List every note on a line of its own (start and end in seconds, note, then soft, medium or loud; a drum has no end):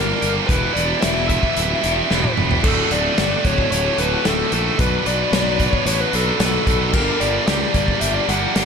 0.00 0.11 G1 medium
0.00 0.47 G2 medium
0.00 0.47 D3 medium
0.00 0.23 G3 loud
0.00 0.22 A#3 loud
0.00 0.21 D4 loud
0.00 0.20 G4 loud
0.00 0.31 A#4 medium
0.21 0.39 G1 medium
0.21 0.48 G3 soft
0.21 0.48 A#3 medium
0.21 0.47 D4 medium
0.21 0.47 G4 medium
0.21 closed hi-hat medium
0.47 0.65 E1 loud
0.47 1.02 E2 medium
0.47 1.02 B2 medium
0.47 0.76 E3 medium
0.47 0.75 G3 medium
0.47 0.74 B3 medium
0.47 0.73 E4 medium
0.47 0.75 B4 medium
0.47 kick loud
0.47 closed hi-hat medium
0.73 0.92 E1 medium
0.73 1.01 G3 medium
0.73 1.02 B3 medium
0.73 1.03 E4 medium
0.73 1.01 D5 medium
0.73 closed hi-hat medium
0.78 1.00 E3 medium
1.01 1.36 E1 medium
1.01 1.56 E2 medium
1.01 1.56 B2 medium
1.01 1.84 E3 medium
1.01 1.83 G3 medium
1.01 1.81 B3 medium
1.01 1.80 E4 medium
1.01 1.27 E5 loud
1.01 snare loud
1.01 closed hi-hat loud
1.29 2.08 E3 medium
1.29 2.10 G3 medium
1.29 2.10 B3 medium
1.29 2.11 E4 medium
1.29 2.33 E5 medium
1.29 kick medium
1.29 closed hi-hat medium
1.43 kick medium
1.57 1.73 D1 medium
1.57 closed hi-hat loud
1.81 2.00 E1 medium
1.81 2.09 E3 medium
1.81 2.10 G3 medium
1.81 2.10 B3 medium
1.81 2.11 E4 medium
1.81 closed hi-hat medium
2.09 2.27 E1 medium
2.09 2.61 E2 loud
2.09 2.62 B2 medium
2.09 2.37 E3 loud
2.09 2.36 G3 loud
2.09 2.36 B3 loud
2.09 2.34 E4 loud
2.09 snare medium
2.24 mid tom medium
2.35 2.54 E1 medium
2.35 2.63 E3 medium
2.35 2.63 G3 medium
2.35 2.62 B3 medium
2.35 2.61 E4 medium
2.35 mid tom medium
2.51 floor tom medium
2.62 2.80 D1 medium
2.62 3.17 D2 medium
2.62 3.16 A2 medium
2.62 2.91 D3 medium
2.62 2.90 A3 medium
2.62 2.89 F#4 medium
2.62 2.91 A4 medium
2.62 4.78 A4 medium
2.62 6.91 F#5 medium
2.62 8.65 D6 medium
2.62 kick loud
2.62 crash loud
2.89 3.07 D1 medium
2.89 3.17 D3 medium
2.89 3.18 A3 medium
2.89 3.20 F#4 medium
2.89 3.45 D5 medium
2.89 closed hi-hat medium
3.17 3.34 G1 medium
3.17 3.71 D2 medium
3.17 4.24 A2 medium
3.17 4.00 D3 medium
3.17 3.98 A3 medium
3.17 3.96 F#4 medium
3.17 snare loud
3.17 closed hi-hat medium
3.44 3.61 D1 medium
3.44 4.25 D3 medium
3.44 4.25 A3 medium
3.44 4.26 F#4 medium
3.44 3.70 C#5 medium
3.44 kick medium
3.44 closed hi-hat medium
3.58 kick medium
3.71 3.88 D1 medium
3.71 3.99 C#5 medium
3.71 closed hi-hat medium
3.97 4.15 D1 medium
3.97 4.25 D3 soft
3.97 4.25 A3 medium
3.97 4.26 F#4 medium
3.97 4.24 B4 medium
3.97 closed hi-hat medium
4.24 4.42 D1 medium
4.24 4.77 D2 medium
4.24 4.77 A2 medium
4.24 4.53 D3 loud
4.24 4.52 A3 loud
4.24 4.50 F#4 loud
4.24 4.53 A4 medium
4.24 snare loud
4.24 closed hi-hat loud
4.51 4.69 A#1 medium
4.51 4.78 D3 medium
4.51 4.78 A3 medium
4.51 4.77 F#4 medium
4.51 4.78 A4 medium
4.51 closed hi-hat medium
4.78 4.95 B1 medium
4.78 5.32 B2 medium
4.78 5.32 F#3 medium
4.78 5.06 B3 loud
4.78 5.06 D4 loud
4.78 5.04 F#4 medium
4.78 5.04 B4 medium
4.78 6.92 B4 medium
4.78 5.03 B4 loud
4.78 kick loud
4.78 closed hi-hat medium
5.05 5.23 B1 medium
5.05 5.30 B3 medium
5.05 5.32 D4 medium
5.05 5.33 F#4 medium
5.05 5.33 B4 medium
5.05 5.31 D5 medium
5.05 closed hi-hat medium
5.31 5.65 B1 medium
5.31 5.87 B2 medium
5.31 5.87 F#3 medium
5.31 6.14 B3 medium
5.31 6.13 D4 medium
5.31 6.12 F#4 medium
5.31 6.10 B4 medium
5.31 5.73 D5 loud
5.31 snare loud
5.31 closed hi-hat loud
5.59 6.38 B3 medium
5.59 6.39 D4 medium
5.59 6.40 F#4 medium
5.59 6.41 B4 medium
5.59 kick medium
5.59 closed hi-hat medium
5.73 5.86 C#5 loud
5.73 kick medium
5.86 6.02 A1 medium
5.86 6.01 C#5 loud
5.86 closed hi-hat medium
6.01 6.15 B4 medium
6.12 6.30 B1 medium
6.12 6.39 B3 medium
6.12 6.39 D4 medium
6.12 6.40 F#4 medium
6.12 6.66 A4 medium
6.12 6.41 B4 medium
6.12 closed hi-hat medium
6.38 6.56 B1 medium
6.38 6.91 B2 medium
6.38 6.92 F#3 loud
6.38 6.68 B3 loud
6.38 6.66 D4 loud
6.38 6.66 F#4 loud
6.38 6.64 B4 loud
6.38 snare loud
6.38 closed hi-hat loud
6.66 6.95 B1 medium
6.66 6.93 B3 medium
6.66 6.93 D4 medium
6.66 6.92 F#4 medium
6.66 6.92 A4 medium
6.66 6.92 B4 medium
6.66 kick medium
6.66 closed hi-hat medium
6.92 7.10 G1 medium
6.92 7.47 G2 medium
6.92 7.47 D3 medium
6.92 7.22 G3 medium
6.92 7.20 A#3 loud
6.92 7.20 D4 loud
6.92 8.65 G4 medium
6.92 7.19 G4 loud
6.92 8.65 A#4 medium
6.92 7.19 A#4 medium
6.92 kick loud
6.92 crash medium
7.19 7.37 G1 medium
7.19 7.46 G3 medium
7.19 7.47 A#3 medium
7.19 7.48 D4 medium
7.19 7.49 G4 medium
7.19 7.46 D5 medium
7.19 closed hi-hat medium
7.46 7.64 C#2 medium
7.46 8.01 G2 medium
7.46 8.01 D3 medium
7.46 8.29 G3 medium
7.46 8.28 A#3 medium
7.46 8.27 D4 medium
7.46 8.26 G4 medium
7.46 8.00 D5 loud
7.46 snare loud
7.46 closed hi-hat medium
7.73 7.91 G1 medium
7.73 8.53 G3 medium
7.73 8.54 A#3 medium
7.73 8.55 D4 medium
7.73 8.55 G4 medium
7.73 kick medium
7.73 closed hi-hat medium
7.88 kick medium
8.01 8.18 G1 medium
8.01 8.15 E5 loud
8.01 closed hi-hat medium
8.15 8.29 D5 medium
8.27 8.45 G1 loud
8.27 8.55 G3 medium
8.27 8.56 A#3 medium
8.27 8.56 D4 medium
8.27 8.57 G4 medium
8.27 8.65 F#5 medium
8.27 closed hi-hat medium
8.55 8.65 G1 medium
8.55 8.65 G2 medium
8.55 8.65 D3 loud
8.55 8.65 G3 medium
8.55 8.65 A#3 loud
8.55 8.65 D4 loud
8.55 8.65 G4 loud
8.55 snare loud
8.55 closed hi-hat loud